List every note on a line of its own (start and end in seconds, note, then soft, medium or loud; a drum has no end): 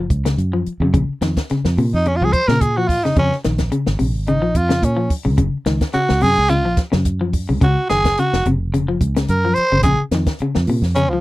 0.00 0.15 F3 medium
0.10 0.35 C#2 medium
0.10 kick medium
0.10 closed hi-hat soft
0.25 0.44 C#3 medium
0.25 snare medium
0.25 closed hi-hat medium
0.37 0.63 F#2 medium
0.37 closed hi-hat medium
0.53 0.72 F3 medium
0.66 muted fingered electric bass stroke soft
0.66 closed hi-hat soft
0.80 0.92 F#2 medium
0.80 0.90 C#3 medium
0.94 1.08 A#1 medium
0.94 1.12 C#3 medium
0.94 kick medium
0.94 closed hi-hat medium
1.08 muted fingered electric bass stroke soft
1.21 1.35 F2 medium
1.21 1.40 D#3 medium
1.21 snare medium
1.21 closed hi-hat soft
1.37 kick medium
1.37 snare medium
1.37 closed hi-hat soft
1.49 1.69 C#3 medium
1.49 muted fingered electric bass stroke soft
1.49 snare soft
1.49 closed hi-hat medium
1.65 1.76 F2 medium
1.65 snare medium
1.78 1.91 A#2 medium
1.78 1.96 C3 medium
1.78 open hi-hat medium
1.93 2.23 F2 medium
1.93 2.09 D#4 medium
2.05 2.18 C#4 medium
2.05 muted clean electric guitar stroke medium
2.05 closed hi-hat medium
2.16 2.26 F4 medium
2.21 2.32 C#2 medium
2.21 2.40 F3 medium
2.21 2.34 G#4 medium
2.33 2.49 C5 loud
2.33 kick medium
2.33 closed hi-hat soft
2.48 3.04 A#2 medium
2.48 2.68 C#3 medium
2.48 2.63 A#4 medium
2.48 snare medium
2.61 2.78 G#4 medium
2.61 kick medium
2.61 closed hi-hat medium
2.77 2.95 F3 medium
2.77 2.90 F#4 medium
2.88 3.05 F4 medium
2.88 kick medium
2.88 open hi-hat medium
3.04 3.16 F2 medium
3.04 3.13 C#3 medium
3.04 3.17 D#4 medium
3.04 snare soft
3.16 3.30 F2 loud
3.16 3.35 C#3 medium
3.16 3.35 C#4 medium
3.16 kick medium
3.16 closed hi-hat medium
3.32 snare soft
3.44 3.70 A#1 medium
3.44 3.63 D#3 medium
3.44 snare medium
3.44 closed hi-hat medium
3.58 kick medium
3.58 snare medium
3.58 closed hi-hat soft
3.72 3.90 C#3 medium
3.72 closed hi-hat medium
3.86 3.99 G#1 medium
3.86 snare medium
3.99 4.15 A#1 medium
3.99 4.17 C3 medium
3.99 open hi-hat medium
4.15 4.42 G#1 medium
4.27 4.38 C#3 medium
4.27 4.58 D#4 medium
4.27 closed hi-hat medium
4.42 4.54 A#1 medium
4.42 4.60 F3 medium
4.55 4.80 F2 medium
4.55 4.86 F4 medium
4.55 kick medium
4.55 closed hi-hat medium
4.69 4.88 C#3 medium
4.69 snare medium
4.69 closed hi-hat medium
4.82 5.08 A#2 medium
4.82 5.12 C#4 medium
4.82 kick medium
4.82 closed hi-hat medium
4.97 5.15 F3 medium
5.10 muted fingered electric bass stroke soft
5.10 kick medium
5.10 open hi-hat medium
5.25 5.37 C#2 medium
5.25 5.34 C#3 medium
5.38 5.52 F#1 loud
5.38 5.56 C#3 medium
5.38 kick medium
5.38 closed hi-hat medium
5.54 muted fingered electric bass stroke soft
5.66 5.80 C#2 medium
5.66 5.85 D#3 medium
5.66 snare medium
5.66 closed hi-hat soft
5.81 kick medium
5.81 snare medium
5.81 closed hi-hat soft
5.93 6.12 C#3 medium
5.93 6.24 F#4 loud
5.93 muted fingered electric bass stroke soft
5.93 closed hi-hat medium
6.09 6.21 C#2 medium
6.09 snare medium
6.21 6.37 F#2 medium
6.21 6.40 C3 medium
6.21 6.51 G#4 loud
6.21 open hi-hat medium
6.38 6.67 C#2 medium
6.49 6.60 C#3 medium
6.49 6.78 F4 loud
6.49 closed hi-hat medium
6.65 6.77 A#1 medium
6.65 6.83 F3 medium
6.77 kick medium
6.77 snare soft
6.77 closed hi-hat medium
6.92 7.51 F#2 medium
6.92 7.10 C#3 medium
6.92 snare medium
7.05 kick medium
7.05 closed hi-hat medium
7.21 7.39 F3 medium
7.33 kick medium
7.33 open hi-hat medium
7.49 7.61 C#2 medium
7.49 7.57 C#3 medium
7.61 7.76 C#2 loud
7.61 7.79 C#3 medium
7.61 7.89 F#4 medium
7.61 kick medium
7.61 closed hi-hat medium
7.90 8.15 F#1 medium
7.90 8.08 D#3 medium
7.90 8.21 G#4 loud
7.90 snare medium
7.90 closed hi-hat medium
8.04 kick medium
8.04 snare medium
8.04 closed hi-hat medium
8.17 8.36 C#3 medium
8.17 8.46 F#4 medium
8.17 closed hi-hat medium
8.33 8.44 F1 medium
8.33 snare medium
8.45 8.61 F#1 medium
8.45 8.64 C3 medium
8.45 closed hi-hat medium
8.61 8.90 F1 medium
8.74 8.83 C#3 medium
8.74 closed hi-hat medium
8.88 9.00 F#1 medium
8.88 9.06 F3 medium
9.01 9.26 C#2 medium
9.01 kick medium
9.01 closed hi-hat medium
9.16 9.34 C#3 medium
9.16 snare medium
9.16 closed hi-hat medium
9.28 9.54 F#2 medium
9.28 9.56 A#4 medium
9.28 closed hi-hat medium
9.45 9.62 F3 medium
9.54 9.83 C5 loud
9.54 muted fingered electric bass stroke soft
9.54 closed hi-hat medium
9.72 9.83 G#1 medium
9.72 9.80 C#3 medium
9.83 9.98 A#1 loud
9.83 10.03 C#3 medium
9.83 10.00 G#4 medium
9.83 kick medium
9.83 closed hi-hat medium
10.11 10.25 F2 medium
10.11 10.32 D#3 medium
10.11 snare medium
10.11 closed hi-hat medium
10.26 kick medium
10.26 snare medium
10.26 closed hi-hat soft
10.39 10.59 C#3 medium
10.39 muted fingered electric bass stroke soft
10.39 closed hi-hat medium
10.55 10.67 F2 medium
10.55 snare medium
10.67 10.81 A#2 medium
10.67 10.87 C3 medium
10.67 open hi-hat medium
10.82 11.10 F2 medium
10.82 snare soft
10.95 11.06 C#3 medium
10.95 11.11 C#4 medium
10.95 closed hi-hat medium
11.09 11.21 C#2 medium
11.09 11.21 F3 medium